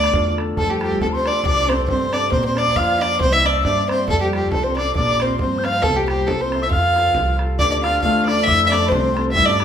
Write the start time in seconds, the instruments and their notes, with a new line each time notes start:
Already playing: harp D3 A3 B3 E4, cello D4, fiddle D5, tin whistle D6
0.04 bodhran
0.13 upright bass E2, harp F4, bodhran
0.37 harp A4, bodhran
0.57 upright bass F2, harp F3, cello A3, fiddle A4, tin whistle A5, bodhran
0.69 cello G3, fiddle G4, tin whistle G5
0.81 cello G3, harp F4 G4 A4, fiddle G4, bodhran
0.92 bodhran
0.98 upright bass D2, harp C3, cello A3, fiddle A4, tin whistle A5, bodhran
1.12 cello C4, fiddle C5, tin whistle C6
1.24 cello D4, harp F4 G4 A4, fiddle D5, bodhran
1.43 upright bass C2, harp C3, cello D4, fiddle D5, tin whistle D6, bodhran
1.69 cello C4, harp C4 E4 A4, fiddle C5, tin whistle C6, bodhran
1.80 bodhran
1.87 upright bass G2, harp G3, cello C4, fiddle C5, tin whistle C6, bodhran
2.12 harp C4 E4 A4, cello D4, fiddle D5, tin whistle D6, bodhran
2.31 upright bass A#1, harp A#3, cello C4, fiddle C5, tin whistle C6, bodhran
2.45 cello C4, fiddle C5, tin whistle C6
2.55 cello D4, harp A#4 C5 D5, fiddle D5, tin whistle D6, bodhran
2.67 bodhran
2.75 upright bass F2, harp F3, cello F4, fiddle F5, tin whistle F6, bodhran
3.00 cello D4, harp A#4 C5 D5, fiddle D5, tin whistle D6, bodhran
3.19 upright bass C2, cello C4, harp C4, fiddle C5, tin whistle C6, bodhran
3.31 cello E4, fiddle E5, tin whistle E6
3.41 cello D4, tin whistle E6
3.46 harp C5 D5 E5, fiddle D5, bodhran
3.50 tin whistle E6
3.55 bodhran
3.62 upright bass G2, harp G3, cello D4, fiddle D5, tin whistle D6, bodhran
3.88 cello C4, harp C5 D5, fiddle C5, tin whistle C6, bodhran
3.93 harp E5
4.08 upright bass F2, harp F3, cello A3, fiddle A4, tin whistle A5, bodhran
4.20 cello G3, fiddle G4, tin whistle G5
4.33 harp F4 A4 C5, fiddle G4, bodhran
4.43 bodhran
4.52 upright bass C2, harp C3, cello A3, fiddle A4, tin whistle A5, bodhran
4.64 cello C4, fiddle C5, tin whistle C6
4.76 cello D4, harp F4 A4 C5, fiddle D5, tin whistle D6, bodhran
4.95 upright bass A#1, harp A#3, cello D4, fiddle D5, tin whistle D6, bodhran
5.20 cello C4, harp F4 A#4 C5, fiddle C5, tin whistle C6, bodhran
5.30 bodhran
5.39 upright bass G2, harp F3, cello C4, fiddle C5, tin whistle C6, bodhran
5.58 tin whistle G6
5.64 cello F4, harp F4 A#4 C5, fiddle F5, tin whistle F6, bodhran
5.82 upright bass C2, cello A3, fiddle A4, tin whistle A5, bodhran
5.86 harp C4
5.96 cello G3, fiddle G4, tin whistle G5
6.06 cello G3, harp F4 A#4, fiddle G4, tin whistle G5, bodhran
6.12 harp C5
6.18 bodhran
6.27 upright bass C2, cello A3, harp C4, fiddle A4, tin whistle A5, bodhran
6.41 cello C4, fiddle C5, tin whistle C6
6.52 harp A4 C5 E5, bodhran
6.62 cello E4, fiddle E5, tin whistle E6
6.71 upright bass F2, harp F3, cello F4, fiddle F5, tin whistle F6, bodhran
6.96 harp F4 A4 C5, bodhran
7.06 bodhran
7.15 upright bass C2, harp C3, bodhran
7.38 harp F4 A4 C5, bodhran
7.59 upright bass D2, harp D3, cello D4, fiddle D5, tin whistle D6, bodhran
7.71 cello D4, fiddle D5, tin whistle D6
7.82 harp D4 F4, cello F4, fiddle F5, tin whistle F6, bodhran
7.86 harp A4
8.02 upright bass E2, harp A3, cello F4, fiddle F5, tin whistle F6, bodhran
8.11 cello F4
8.16 cello F4
8.26 harp D4 F4, cello D4, fiddle D5, tin whistle D6, bodhran
8.30 harp A4
8.44 upright bass F2, harp F3, cello E4, fiddle E5, bodhran
8.49 tin whistle E6
8.67 fiddle D5 E5
8.71 harp C4 F4 A4, cello D4, tin whistle D6, bodhran
8.86 fiddle C5, tin whistle B5
8.91 upright bass C2, harp C3, cello C4, tin whistle C6, bodhran
9.13 harp C4 F4 A4, bodhran
9.32 upright bass G2, harp G3, cello E4, fiddle E5, tin whistle E6, bodhran
9.46 cello D4, fiddle D5, tin whistle D6
9.60 harp D4 G4 B4, bodhran